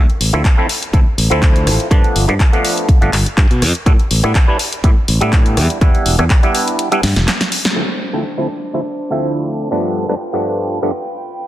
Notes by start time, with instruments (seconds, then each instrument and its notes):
0.10 closed hi-hat
0.20 fingered electric bass A1, open hi-hat
0.33 fingered electric bass D2, clav F3 A3 C4 E4, cross-stick
0.45 kick, clap, closed hi-hat
0.57 clav F3 A3 C4 E4
0.69 open hi-hat
0.83 closed hi-hat
0.93 fingered electric bass D2, clav F3 A3 C4 E4, kick, closed hi-hat
1.18 fingered electric bass A1, open hi-hat
1.30 fingered electric bass D2, clav F3 A3 C4 E4, closed hi-hat
1.42 kick, clap, closed hi-hat
1.56 closed hi-hat
1.67 fingered electric bass A1, cross-stick, open hi-hat
1.80 closed hi-hat
1.91 fingered electric bass G2, clav F3 A3 B3 D4, kick, cross-stick, closed hi-hat
2.04 closed hi-hat
2.16 fingered electric bass G1, open hi-hat
2.28 fingered electric bass G2, clav F3 A3 B3 D4, cross-stick, closed hi-hat
2.40 kick, clap, closed hi-hat
2.53 clav F3 A3 B3 D4, closed hi-hat
2.65 open hi-hat
2.78 closed hi-hat
2.89 kick, closed hi-hat
3.01 fingered electric bass G1, clav F3 A3 B3 D4, closed hi-hat
3.13 fingered electric bass G1, clap, open hi-hat
3.26 muted fingered electric bass stroke, closed hi-hat
3.37 fingered electric bass G2, kick, clap, closed hi-hat
3.51 fingered electric bass B2, closed hi-hat
3.62 fingered electric bass F2, cross-stick, open hi-hat
3.75 closed hi-hat
3.86 fingered electric bass A2, clav G3 B3 D4 E4, kick, cross-stick, closed hi-hat
3.99 closed hi-hat
4.11 fingered electric bass A1, open hi-hat
4.23 fingered electric bass A2, clav G3 B3 D4 E4, cross-stick, closed hi-hat
4.35 kick, clap, closed hi-hat
4.48 clav G3 B3 D4 E4
4.59 open hi-hat
4.73 closed hi-hat
4.84 fingered electric bass A2, clav G3 B3 D4 E4, kick, closed hi-hat
5.08 fingered electric bass A1, open hi-hat
5.20 fingered electric bass A2, clav G3 B3 D4 E4, closed hi-hat
5.33 kick, clap, closed hi-hat
5.46 closed hi-hat
5.57 fingered electric bass E2, cross-stick, open hi-hat
5.70 closed hi-hat
5.81 fingered electric bass E2, clav G3 B3 D4 E4, kick, cross-stick, closed hi-hat
5.95 closed hi-hat
6.06 fingered electric bass E1, open hi-hat
6.18 fingered electric bass E2, clav G3 B3 D4 E4, cross-stick, closed hi-hat
6.30 kick, clap, closed hi-hat
6.43 clav G3 B3 D4 E4, closed hi-hat
6.55 open hi-hat
6.68 closed hi-hat
6.79 closed hi-hat
6.91 clav G3 B3 D4 E4, closed hi-hat
7.03 fingered electric bass G2, snare, open hi-hat
7.16 fingered electric bass E1, snare, closed hi-hat
7.28 snare, clap, closed hi-hat
7.41 snare, closed hi-hat
7.52 open hi-hat
7.65 snare
7.76 clav D2 F3 A3 C4 E4, violin section D4 C5
8.13 clav D2 F3 A3 C4 E4
8.38 clav D2 F3 A3 C4 E4
8.73 clav D2 F3 A3 C4 E4
9.10 clav D2 F3 A3 C4 E4
9.71 clav G2 F3 A3 B3 D4, violin section F4 B4 G5
10.08 clav G2 F3 A3 B3 D4
10.33 clav G2 F3 A3 B3 D4
10.82 clav G2 F3 A3 B3 D4